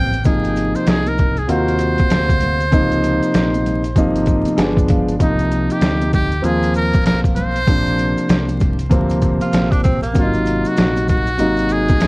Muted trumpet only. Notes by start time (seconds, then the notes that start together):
Already playing: G5
0.26 G#4
0.76 C5
0.89 G#4
1.08 A#4
1.38 G#4
1.51 C5
5.23 D#4
5.72 G4
6.15 G4
6.45 G#4
6.76 A#4
7.07 A#4
7.37 C5
10.19 F4
10.67 F#4
11.09 F#4
11.72 G#4